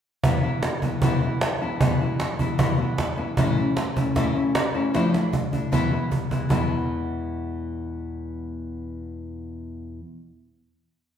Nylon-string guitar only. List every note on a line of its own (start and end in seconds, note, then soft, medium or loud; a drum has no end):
0.24 0.43 E2 medium
0.24 0.43 B2 medium
0.24 0.43 E3 medium
0.24 0.43 G#3 medium
0.24 0.43 B3 medium
0.24 0.42 E4 medium
0.43 0.62 E3 soft
0.43 0.63 G#3 soft
0.43 0.63 B3 medium
0.43 0.62 E4 medium
0.63 muted nylon-string guitar stroke medium
0.83 1.02 E3 medium
0.83 1.02 G#3 soft
0.83 1.02 B3 medium
0.83 1.02 E4 medium
1.02 1.21 E2 medium
1.02 1.21 B2 medium
1.02 1.22 E3 medium
1.02 1.22 G#3 medium
1.02 1.22 B3 medium
1.02 1.21 E4 loud
1.22 1.41 E3 medium
1.22 1.41 G#3 soft
1.22 1.41 B3 medium
1.22 1.41 E4 medium
1.42 muted nylon-string guitar stroke medium
1.62 1.80 E3 medium
1.62 1.81 G#3 medium
1.62 1.80 B3 medium
1.62 1.80 E4 medium
1.81 1.99 E2 medium
1.81 2.00 B2 medium
1.81 2.00 E3 medium
1.81 2.00 G#3 medium
1.81 2.00 B3 medium
1.81 2.00 E4 medium
2.01 2.19 E3 soft
2.01 2.19 G#3 soft
2.01 2.19 B3 medium
2.01 2.20 E4 medium
2.20 muted nylon-string guitar stroke medium
2.40 2.57 E3 medium
2.40 2.58 G#3 medium
2.40 2.58 B3 medium
2.40 2.58 E4 medium
2.58 2.77 E2 medium
2.58 2.78 B2 medium
2.58 2.78 E3 medium
2.58 2.78 G#3 medium
2.58 2.77 B3 loud
2.58 2.77 E4 medium
2.78 2.97 E3 soft
2.78 2.98 G#3 soft
2.78 2.97 B3 medium
2.78 2.97 E4 medium
2.98 muted nylon-string guitar stroke medium
3.17 3.37 E3 soft
3.17 3.37 G#3 soft
3.17 3.37 B3 medium
3.17 3.36 E4 medium
3.38 3.56 A2 medium
3.38 3.56 E3 medium
3.38 3.57 A3 medium
3.38 3.57 C#4 medium
3.38 3.56 E4 medium
3.57 3.76 A3 soft
3.57 3.76 C#4 medium
3.57 3.76 E4 medium
3.76 muted nylon-string guitar stroke medium
3.96 4.15 A3 soft
3.96 4.15 C#4 soft
3.96 4.15 E4 medium
4.15 4.34 A2 medium
4.15 4.35 E3 loud
4.15 4.35 A3 medium
4.15 4.35 C#4 medium
4.15 4.34 E4 medium
4.35 4.54 A3 soft
4.35 4.54 C#4 medium
4.35 4.54 E4 medium
4.55 muted nylon-string guitar stroke medium
4.74 4.93 A3 medium
4.74 4.94 C#4 medium
4.74 4.93 E4 medium
4.94 5.13 D3 medium
4.94 5.13 F3 medium
4.94 5.13 A3 medium
4.94 5.12 D4 medium
4.94 5.11 E4 loud
5.13 5.32 A3 soft
5.13 5.32 D4 medium
5.13 5.32 E4 medium
5.33 muted nylon-string guitar stroke medium
5.52 5.72 A3 soft
5.52 5.72 D4 soft
5.52 5.71 E4 medium
5.72 5.91 E2 medium
5.72 5.91 B2 medium
5.72 5.91 E3 loud
5.72 5.91 G#3 medium
5.72 5.91 B3 medium
5.72 5.90 E4 medium
5.91 6.10 E3 soft
5.91 6.10 G#3 medium
5.91 6.11 B3 medium
5.91 6.10 E4 medium
6.11 muted nylon-string guitar stroke medium
6.31 6.49 E3 medium
6.31 6.49 G#3 medium
6.31 6.50 B3 medium
6.31 6.50 E4 medium
6.49 9.99 E2 medium
6.49 10.00 B2 medium
6.49 10.00 E3 medium
6.49 10.01 G#3 medium
6.49 10.01 B3 medium
6.49 10.01 E4 loud